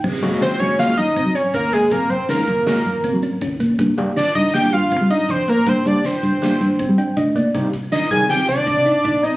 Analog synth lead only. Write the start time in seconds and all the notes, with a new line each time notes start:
0.42 C5
0.59 C#5
0.79 F5
0.98 D#5
1.35 C#5
1.54 A#4
1.73 G#4
1.92 A#4
2.10 C5
2.30 A#4
4.17 D5
4.35 D#5
4.54 G5
4.73 F5
5.10 D#5
5.30 C5
5.49 A#4
5.69 C5
5.87 D5
6.05 C5
7.92 D#5
8.11 G#5
8.30 G5
8.49 D5
9.24 D#5